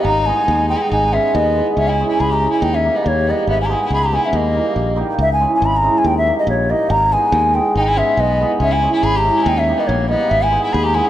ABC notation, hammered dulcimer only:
X:1
M:2/4
L:1/8
Q:"Swing 16ths" 1/4=140
K:none
V:1 name="Hammered dulcimer"
z [_A,_C_E_A] z [A,CEA] | z [_A,_C_E_A] z [A,CEA] | z [_A,_D_F_A] z [A,DFA] | z [G,_B,_EG] z [G,B,EG] |
z [_A,_C_E_A] z [A,CEA] | z [G,_B,_EG] z [G,B,EG] | z [_A,_D_F_A] z [A,DFA] | z [G,_B,_EG] z [G,B,EG] |
z [_A,_C_E_A] z [A,CEA] | z [_A,_C_E_A] z [A,CEA] | z [_A,_D_F_A] z [A,DFA] | z [G,_B,_EG] z [G,B,EG] |
z [_A,_C_E_A] z [A,CEA] |]